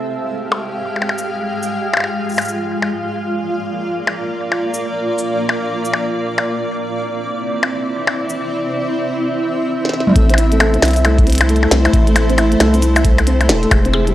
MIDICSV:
0, 0, Header, 1, 6, 480
1, 0, Start_track
1, 0, Tempo, 444444
1, 1371, Time_signature, 4, 2, 24, 8
1, 15278, End_track
2, 0, Start_track
2, 0, Title_t, "Ambient pad"
2, 0, Program_c, 0, 92
2, 0, Note_on_c, 0, 56, 75
2, 0, Note_on_c, 0, 67, 71
2, 0, Note_on_c, 0, 77, 86
2, 1350, Note_off_c, 0, 67, 0
2, 1369, Note_on_c, 0, 65, 72
2, 3251, Note_off_c, 0, 56, 0
2, 3251, Note_off_c, 0, 77, 0
2, 3290, Note_on_c, 0, 58, 77
2, 3290, Note_on_c, 0, 74, 84
2, 7087, Note_off_c, 0, 65, 0
2, 7092, Note_off_c, 0, 58, 0
2, 7131, Note_on_c, 0, 60, 77
2, 7131, Note_on_c, 0, 64, 67
2, 9007, Note_off_c, 0, 74, 0
2, 9050, Note_on_c, 0, 76, 86
2, 10932, Note_off_c, 0, 60, 0
2, 10932, Note_off_c, 0, 64, 0
2, 10951, Note_off_c, 0, 76, 0
2, 10970, Note_on_c, 0, 57, 80
2, 10970, Note_on_c, 0, 72, 87
2, 10971, Note_on_c, 0, 64, 74
2, 14772, Note_off_c, 0, 57, 0
2, 14772, Note_off_c, 0, 64, 0
2, 14772, Note_off_c, 0, 72, 0
2, 14810, Note_on_c, 0, 65, 75
2, 14810, Note_on_c, 0, 67, 80
2, 14810, Note_on_c, 0, 68, 88
2, 15278, Note_off_c, 0, 65, 0
2, 15278, Note_off_c, 0, 67, 0
2, 15278, Note_off_c, 0, 68, 0
2, 15278, End_track
3, 0, Start_track
3, 0, Title_t, "Felt piano"
3, 0, Program_c, 1, 0
3, 10970, Note_on_c, 1, 57, 84
3, 11042, Note_off_c, 1, 57, 0
3, 11119, Note_on_c, 1, 60, 82
3, 11192, Note_off_c, 1, 60, 0
3, 11211, Note_on_c, 1, 64, 76
3, 11330, Note_off_c, 1, 64, 0
3, 11359, Note_on_c, 1, 57, 76
3, 11435, Note_off_c, 1, 57, 0
3, 11451, Note_on_c, 1, 57, 101
3, 11592, Note_off_c, 1, 57, 0
3, 11600, Note_on_c, 1, 60, 74
3, 11643, Note_off_c, 1, 60, 0
3, 11691, Note_on_c, 1, 64, 73
3, 11809, Note_off_c, 1, 64, 0
3, 11839, Note_on_c, 1, 76, 69
3, 11912, Note_off_c, 1, 76, 0
3, 11931, Note_on_c, 1, 57, 82
3, 12050, Note_off_c, 1, 57, 0
3, 12079, Note_on_c, 1, 57, 77
3, 12123, Note_off_c, 1, 57, 0
3, 12170, Note_on_c, 1, 60, 76
3, 12289, Note_off_c, 1, 60, 0
3, 12319, Note_on_c, 1, 64, 74
3, 12392, Note_off_c, 1, 64, 0
3, 12410, Note_on_c, 1, 57, 83
3, 12543, Note_off_c, 1, 57, 0
3, 12559, Note_on_c, 1, 57, 97
3, 12646, Note_off_c, 1, 57, 0
3, 12651, Note_on_c, 1, 60, 75
3, 12722, Note_off_c, 1, 60, 0
3, 12800, Note_on_c, 1, 64, 77
3, 12872, Note_off_c, 1, 64, 0
3, 12891, Note_on_c, 1, 76, 87
3, 13010, Note_off_c, 1, 76, 0
3, 13039, Note_on_c, 1, 57, 80
3, 13112, Note_off_c, 1, 57, 0
3, 13131, Note_on_c, 1, 57, 75
3, 13202, Note_off_c, 1, 57, 0
3, 13279, Note_on_c, 1, 60, 76
3, 13352, Note_off_c, 1, 60, 0
3, 13371, Note_on_c, 1, 64, 81
3, 13490, Note_off_c, 1, 64, 0
3, 13519, Note_on_c, 1, 57, 76
3, 13595, Note_off_c, 1, 57, 0
3, 13611, Note_on_c, 1, 57, 99
3, 13752, Note_off_c, 1, 57, 0
3, 13760, Note_on_c, 1, 60, 69
3, 13803, Note_off_c, 1, 60, 0
3, 13851, Note_on_c, 1, 64, 80
3, 13969, Note_off_c, 1, 64, 0
3, 13999, Note_on_c, 1, 76, 77
3, 14072, Note_off_c, 1, 76, 0
3, 14090, Note_on_c, 1, 57, 77
3, 14209, Note_off_c, 1, 57, 0
3, 14239, Note_on_c, 1, 57, 74
3, 14283, Note_off_c, 1, 57, 0
3, 14330, Note_on_c, 1, 60, 82
3, 14449, Note_off_c, 1, 60, 0
3, 14479, Note_on_c, 1, 64, 77
3, 14552, Note_off_c, 1, 64, 0
3, 14571, Note_on_c, 1, 57, 77
3, 14703, Note_off_c, 1, 57, 0
3, 14719, Note_on_c, 1, 57, 98
3, 14806, Note_off_c, 1, 57, 0
3, 14810, Note_on_c, 1, 56, 84
3, 14882, Note_off_c, 1, 56, 0
3, 14959, Note_on_c, 1, 60, 81
3, 15032, Note_off_c, 1, 60, 0
3, 15050, Note_on_c, 1, 68, 77
3, 15169, Note_off_c, 1, 68, 0
3, 15199, Note_on_c, 1, 55, 79
3, 15272, Note_off_c, 1, 55, 0
3, 15278, End_track
4, 0, Start_track
4, 0, Title_t, "Analog synth bass"
4, 0, Program_c, 2, 38
4, 10970, Note_on_c, 2, 33, 104
4, 11643, Note_off_c, 2, 33, 0
4, 11690, Note_on_c, 2, 36, 85
4, 12603, Note_off_c, 2, 36, 0
4, 12650, Note_on_c, 2, 36, 91
4, 12831, Note_off_c, 2, 36, 0
4, 12890, Note_on_c, 2, 33, 101
4, 13563, Note_off_c, 2, 33, 0
4, 13611, Note_on_c, 2, 36, 82
4, 14570, Note_on_c, 2, 28, 99
4, 14586, Note_off_c, 2, 36, 0
4, 14751, Note_off_c, 2, 28, 0
4, 14810, Note_on_c, 2, 29, 101
4, 15278, Note_off_c, 2, 29, 0
4, 15278, End_track
5, 0, Start_track
5, 0, Title_t, "Percussion blips"
5, 559, Note_on_c, 9, 76, 55
5, 667, Note_off_c, 9, 76, 0
5, 1039, Note_on_c, 9, 76, 24
5, 1100, Note_off_c, 9, 76, 0
5, 1100, Note_on_c, 9, 76, 32
5, 1180, Note_off_c, 9, 76, 0
5, 1180, Note_on_c, 9, 76, 43
5, 1288, Note_off_c, 9, 76, 0
5, 2090, Note_on_c, 9, 76, 48
5, 2127, Note_off_c, 9, 76, 0
5, 2127, Note_on_c, 9, 76, 42
5, 2164, Note_off_c, 9, 76, 0
5, 2164, Note_on_c, 9, 76, 33
5, 2202, Note_off_c, 9, 76, 0
5, 2202, Note_on_c, 9, 76, 27
5, 2310, Note_off_c, 9, 76, 0
5, 2571, Note_on_c, 9, 76, 55
5, 2679, Note_off_c, 9, 76, 0
5, 3050, Note_on_c, 9, 76, 48
5, 3158, Note_off_c, 9, 76, 0
5, 4399, Note_on_c, 9, 76, 54
5, 4507, Note_off_c, 9, 76, 0
5, 4879, Note_on_c, 9, 76, 52
5, 4987, Note_off_c, 9, 76, 0
5, 5931, Note_on_c, 9, 76, 53
5, 6039, Note_off_c, 9, 76, 0
5, 6410, Note_on_c, 9, 76, 59
5, 6518, Note_off_c, 9, 76, 0
5, 6890, Note_on_c, 9, 76, 48
5, 6998, Note_off_c, 9, 76, 0
5, 8239, Note_on_c, 9, 76, 59
5, 8347, Note_off_c, 9, 76, 0
5, 8719, Note_on_c, 9, 76, 58
5, 8827, Note_off_c, 9, 76, 0
5, 11165, Note_on_c, 9, 76, 55
5, 11273, Note_off_c, 9, 76, 0
5, 11450, Note_on_c, 9, 76, 84
5, 11558, Note_off_c, 9, 76, 0
5, 11690, Note_on_c, 9, 76, 55
5, 11798, Note_off_c, 9, 76, 0
5, 11931, Note_on_c, 9, 76, 56
5, 12039, Note_off_c, 9, 76, 0
5, 12319, Note_on_c, 9, 76, 82
5, 12427, Note_off_c, 9, 76, 0
5, 12559, Note_on_c, 9, 76, 55
5, 12667, Note_off_c, 9, 76, 0
5, 12799, Note_on_c, 9, 76, 55
5, 12907, Note_off_c, 9, 76, 0
5, 13130, Note_on_c, 9, 76, 79
5, 13238, Note_off_c, 9, 76, 0
5, 13370, Note_on_c, 9, 76, 53
5, 13478, Note_off_c, 9, 76, 0
5, 13610, Note_on_c, 9, 76, 54
5, 13718, Note_off_c, 9, 76, 0
5, 13999, Note_on_c, 9, 76, 79
5, 14107, Note_off_c, 9, 76, 0
5, 14238, Note_on_c, 9, 76, 52
5, 14346, Note_off_c, 9, 76, 0
5, 14479, Note_on_c, 9, 76, 53
5, 14587, Note_off_c, 9, 76, 0
5, 14810, Note_on_c, 9, 76, 78
5, 14918, Note_off_c, 9, 76, 0
5, 15049, Note_on_c, 9, 76, 49
5, 15157, Note_off_c, 9, 76, 0
5, 15278, End_track
6, 0, Start_track
6, 0, Title_t, "Drums"
6, 1279, Note_on_c, 9, 69, 67
6, 1387, Note_off_c, 9, 69, 0
6, 1759, Note_on_c, 9, 69, 53
6, 1867, Note_off_c, 9, 69, 0
6, 2479, Note_on_c, 9, 69, 25
6, 2502, Note_off_c, 9, 69, 0
6, 2502, Note_on_c, 9, 69, 28
6, 2524, Note_off_c, 9, 69, 0
6, 2524, Note_on_c, 9, 69, 30
6, 2547, Note_off_c, 9, 69, 0
6, 2547, Note_on_c, 9, 69, 35
6, 2571, Note_off_c, 9, 69, 0
6, 2571, Note_on_c, 9, 69, 40
6, 2607, Note_off_c, 9, 69, 0
6, 2607, Note_on_c, 9, 69, 42
6, 2645, Note_off_c, 9, 69, 0
6, 2645, Note_on_c, 9, 69, 46
6, 2682, Note_off_c, 9, 69, 0
6, 2682, Note_on_c, 9, 69, 50
6, 2790, Note_off_c, 9, 69, 0
6, 5120, Note_on_c, 9, 69, 71
6, 5228, Note_off_c, 9, 69, 0
6, 5599, Note_on_c, 9, 69, 57
6, 5707, Note_off_c, 9, 69, 0
6, 6319, Note_on_c, 9, 69, 57
6, 6427, Note_off_c, 9, 69, 0
6, 8959, Note_on_c, 9, 69, 75
6, 9067, Note_off_c, 9, 69, 0
6, 10639, Note_on_c, 9, 38, 47
6, 10684, Note_off_c, 9, 38, 0
6, 10684, Note_on_c, 9, 38, 37
6, 10730, Note_off_c, 9, 38, 0
6, 10730, Note_on_c, 9, 38, 32
6, 10804, Note_off_c, 9, 38, 0
6, 10804, Note_on_c, 9, 38, 25
6, 10879, Note_on_c, 9, 45, 69
6, 10902, Note_off_c, 9, 45, 0
6, 10902, Note_on_c, 9, 45, 58
6, 10912, Note_off_c, 9, 38, 0
6, 10924, Note_off_c, 9, 45, 0
6, 10924, Note_on_c, 9, 45, 48
6, 10947, Note_off_c, 9, 45, 0
6, 10947, Note_on_c, 9, 45, 38
6, 10970, Note_on_c, 9, 36, 127
6, 10970, Note_on_c, 9, 42, 70
6, 11055, Note_off_c, 9, 45, 0
6, 11078, Note_off_c, 9, 36, 0
6, 11078, Note_off_c, 9, 42, 0
6, 11119, Note_on_c, 9, 42, 42
6, 11210, Note_off_c, 9, 42, 0
6, 11210, Note_on_c, 9, 42, 92
6, 11318, Note_off_c, 9, 42, 0
6, 11359, Note_on_c, 9, 42, 41
6, 11450, Note_off_c, 9, 42, 0
6, 11450, Note_on_c, 9, 42, 69
6, 11558, Note_off_c, 9, 42, 0
6, 11599, Note_on_c, 9, 42, 42
6, 11690, Note_off_c, 9, 42, 0
6, 11690, Note_on_c, 9, 38, 118
6, 11690, Note_on_c, 9, 42, 85
6, 11720, Note_off_c, 9, 42, 0
6, 11720, Note_on_c, 9, 42, 73
6, 11750, Note_off_c, 9, 42, 0
6, 11750, Note_on_c, 9, 42, 58
6, 11780, Note_off_c, 9, 42, 0
6, 11780, Note_on_c, 9, 42, 48
6, 11798, Note_off_c, 9, 38, 0
6, 11809, Note_off_c, 9, 42, 0
6, 11809, Note_on_c, 9, 42, 40
6, 11840, Note_off_c, 9, 42, 0
6, 11840, Note_on_c, 9, 42, 41
6, 11840, Note_on_c, 9, 69, 62
6, 11931, Note_off_c, 9, 42, 0
6, 11931, Note_on_c, 9, 42, 69
6, 11948, Note_off_c, 9, 69, 0
6, 12039, Note_off_c, 9, 42, 0
6, 12079, Note_on_c, 9, 36, 106
6, 12080, Note_on_c, 9, 42, 42
6, 12170, Note_off_c, 9, 42, 0
6, 12170, Note_on_c, 9, 42, 48
6, 12187, Note_off_c, 9, 36, 0
6, 12201, Note_off_c, 9, 42, 0
6, 12201, Note_on_c, 9, 42, 57
6, 12230, Note_off_c, 9, 42, 0
6, 12230, Note_on_c, 9, 42, 66
6, 12260, Note_off_c, 9, 42, 0
6, 12260, Note_on_c, 9, 42, 76
6, 12290, Note_off_c, 9, 42, 0
6, 12290, Note_on_c, 9, 42, 88
6, 12319, Note_off_c, 9, 42, 0
6, 12319, Note_on_c, 9, 42, 41
6, 12410, Note_off_c, 9, 42, 0
6, 12410, Note_on_c, 9, 42, 68
6, 12485, Note_off_c, 9, 42, 0
6, 12485, Note_on_c, 9, 42, 40
6, 12593, Note_off_c, 9, 42, 0
6, 12651, Note_on_c, 9, 38, 121
6, 12651, Note_on_c, 9, 42, 99
6, 12759, Note_off_c, 9, 38, 0
6, 12759, Note_off_c, 9, 42, 0
6, 12799, Note_on_c, 9, 42, 41
6, 12890, Note_off_c, 9, 42, 0
6, 12890, Note_on_c, 9, 36, 127
6, 12890, Note_on_c, 9, 42, 72
6, 12998, Note_off_c, 9, 36, 0
6, 12998, Note_off_c, 9, 42, 0
6, 13039, Note_on_c, 9, 42, 42
6, 13130, Note_off_c, 9, 42, 0
6, 13130, Note_on_c, 9, 42, 93
6, 13238, Note_off_c, 9, 42, 0
6, 13279, Note_on_c, 9, 42, 40
6, 13370, Note_off_c, 9, 42, 0
6, 13370, Note_on_c, 9, 42, 69
6, 13478, Note_off_c, 9, 42, 0
6, 13519, Note_on_c, 9, 42, 42
6, 13610, Note_off_c, 9, 42, 0
6, 13610, Note_on_c, 9, 38, 123
6, 13610, Note_on_c, 9, 42, 94
6, 13718, Note_off_c, 9, 38, 0
6, 13718, Note_off_c, 9, 42, 0
6, 13758, Note_on_c, 9, 42, 42
6, 13758, Note_on_c, 9, 69, 59
6, 13850, Note_off_c, 9, 42, 0
6, 13850, Note_off_c, 9, 69, 0
6, 13850, Note_on_c, 9, 42, 71
6, 13850, Note_on_c, 9, 69, 76
6, 13958, Note_off_c, 9, 42, 0
6, 13958, Note_off_c, 9, 69, 0
6, 13999, Note_on_c, 9, 42, 44
6, 13999, Note_on_c, 9, 69, 77
6, 14089, Note_off_c, 9, 42, 0
6, 14089, Note_on_c, 9, 42, 106
6, 14090, Note_on_c, 9, 36, 124
6, 14107, Note_off_c, 9, 69, 0
6, 14197, Note_off_c, 9, 42, 0
6, 14198, Note_off_c, 9, 36, 0
6, 14238, Note_on_c, 9, 42, 42
6, 14330, Note_off_c, 9, 42, 0
6, 14330, Note_on_c, 9, 42, 68
6, 14438, Note_off_c, 9, 42, 0
6, 14479, Note_on_c, 9, 42, 42
6, 14570, Note_off_c, 9, 42, 0
6, 14570, Note_on_c, 9, 38, 127
6, 14570, Note_on_c, 9, 42, 98
6, 14678, Note_off_c, 9, 38, 0
6, 14678, Note_off_c, 9, 42, 0
6, 14719, Note_on_c, 9, 42, 41
6, 14810, Note_off_c, 9, 42, 0
6, 14810, Note_on_c, 9, 36, 127
6, 14810, Note_on_c, 9, 42, 71
6, 14918, Note_off_c, 9, 36, 0
6, 14918, Note_off_c, 9, 42, 0
6, 14959, Note_on_c, 9, 42, 39
6, 15067, Note_off_c, 9, 42, 0
6, 15198, Note_on_c, 9, 42, 40
6, 15278, Note_off_c, 9, 42, 0
6, 15278, End_track
0, 0, End_of_file